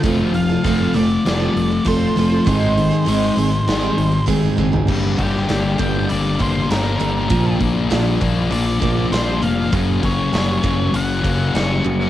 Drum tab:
CC |----------------|----------------|x---------------|----------------|
HH |o-o-o-o-o-o-o-o-|o-o-o-o-o-o-o---|--o-o-o-o-o-o-o-|o-o-o-o-o-o-o-o-|
SD |--------o-------|--------o-------|---oo-------o---|----o-------o---|
FT |----------------|---------------o|----------------|----------------|
BD |o---o-------o---|o-----------o-o-|o-o---o---o-----|o-o---o---o-----|

CC |----------------|
HH |o-o-o-o-o-o-o-o-|
SD |----o-------o---|
FT |----------------|
BD |o-o---o---o-----|